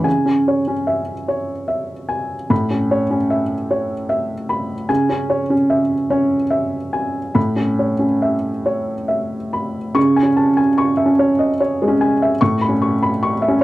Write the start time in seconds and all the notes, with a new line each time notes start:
0.04 C#3 G#5
0.25 C#4
0.48 C#5
0.68 C#4
0.87 E5
1.28 C#5
1.68 E5
2.09 G#5
2.50 A2 B5
2.70 C#4
2.91 C#5
3.10 C#4
3.30 E5
3.71 C#5
4.09 E5
4.49 B5
4.89 C#3 G#5
5.09 C#4
5.30 C#5
5.50 C#4
5.70 E5
6.10 C#4 C#5
6.50 E5
6.93 G#5
7.35 A2 B5
7.56 C#4
7.79 C#5
7.99 C#4
8.22 E5
8.66 C#5
9.08 E5
9.53 B5
9.95 C#3 C#6
10.16 G#5
10.23 C#4
10.37 A5
10.57 G#5
10.78 C#6
10.97 E5
11.06 C#4
11.19 C#5
11.39 D#5
11.60 C#5
11.82 G#3
11.88 C#4
12.01 G#5
12.22 E5
12.41 A2 C#6
12.61 B5
12.68 C#4
12.82 C#6
13.03 B5
13.23 C#6
13.42 E5
13.48 C#4